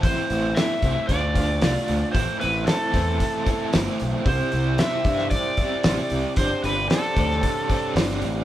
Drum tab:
HH |o-o-o-o-o-o-o-o-|o-o-o-o-o-o-o-o-|o-o-o-o-o-o-o-o-|o-o-o-o-o-o-o-o-|
SD |----o-------o---|----o-------o---|----o--o----o---|----o--o----oo--|
BD |o-----o-o-o-----|o-----o-o-o-----|o-----o-o-o-----|o-----o-o-o-----|